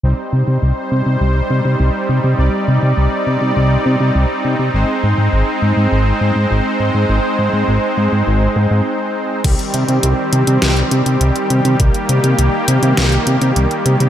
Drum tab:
CC |----------------|----------------|----------------|----------------|
HH |----------------|----------------|----------------|----------------|
SD |----------------|----------------|----------------|----------------|
BD |----------------|----------------|----------------|----------------|

CC |x---------------|----------------|
HH |xxxxx-xxxxxxxxxx|xxxxx-xxxxxxxxxx|
SD |--------o-------|--------o-------|
BD |o---------------|o---------------|